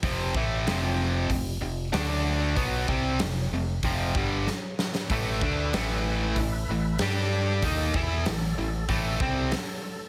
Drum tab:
HH |o---o---o---o---|o---o---o-------|o---o---o---o---|o---o---o---o---|
SD |----o-------o---|----o-------o-oo|----o-------o---|----o-------o---|
BD |o-o-----o-------|o-o-----o-o-----|o-o-----o-------|o-o-----o-o-----|